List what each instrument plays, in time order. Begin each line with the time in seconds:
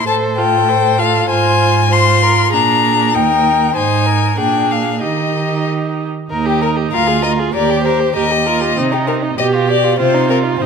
0.07 cello A2, viola A4, violin C5 A5
0.38 viola F4, violin A4 G5
0.68 viola A4, violin C5
0.98 viola F4, violin A4 F5
1.29 cello G#2, viola F4, violin C5 G#5
1.91 viola F4, violin C5 C6
2.23 violin A#4
2.52 cello A#2, viola D4, violin G#4 A#5
3.14 cello D#2, viola D#4, violin A#4 G5
3.75 cello G#2, viola D#4, violin C5 G#5
4.07 violin A#4
4.38 cello A#2, viola D4, violin G#4 G5
4.71 violin F5
5.02 cello D#3, viola D#4, violin G4 D#5
6.30 cello D#2, viola D#4, violin A#4
6.46 violin G4
6.62 violin A#4
6.76 violin G4
6.91 cello D2, viola F4, violin A#4 F5
7.07 violin G#4
7.23 violin A#4 D#5
7.39 violin G#4
7.53 cello D#2, viola G4, violin A#4 D5
7.70 violin G4
7.84 violin A#4 C5
8.00 violin G4
8.16 cello D#2, viola G4, violin A#4 D#5
8.31 violin G4
8.46 viola F4, violin A#4
8.61 violin G4
8.77 cello C3, violin C4, viola D#4
8.92 violin D#4 G4
9.07 violin C4 A#4
9.22 violin D#4
9.38 cello B2, violin G4 D#5, viola G4
9.54 violin F4
9.68 violin G4 D5
9.84 violin F4
9.99 cello C3, violin C4 C5, viola F4
10.14 violin D#4
10.29 violin C4 A#4
10.44 violin D#4
10.59 cello C3, violin C4 C5, viola D#4